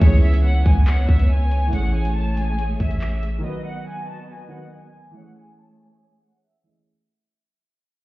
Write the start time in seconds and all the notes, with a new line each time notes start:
Already playing: E3
0.00 C#2 B3 C#4 E4 C#5, kick, closed hi-hat, crash
0.04 G#4 C#5
0.23 E5
0.34 closed hi-hat
0.44 F#5
0.66 C#2 G#5, kick, closed hi-hat
0.87 F#5, clap, closed hi-hat
1.09 C#2 E5, kick
1.19 closed hi-hat
1.30 G#5
1.51 closed hi-hat
1.67 E3 A3
1.72 A1 A3 C#4 G#4 F#5, closed hi-hat
1.78 C#5
1.95 G#5
2.05 closed hi-hat
2.16 A5
2.37 G#5, closed hi-hat
2.59 closed hi-hat
2.80 A1 E5, kick, closed hi-hat
2.91 closed hi-hat
3.01 clap
3.23 closed hi-hat
3.39 D#3 F#3
3.44 B3 F#4 D#5
3.49 B4
3.66 F#5
3.87 G#5
4.08 A5
4.30 G#5
4.48 D#3 F#3 B3 F#4 F#5
4.54 B4
4.73 G#5
5.11 E3 A3
5.15 A3 C#4 G#4 C#5 F#5
5.22 C#5
5.37 G#5
5.59 A5
5.80 G#5
6.23 F#5
6.45 E5
6.63 E3 A3 C#4 G#4
6.69 D#5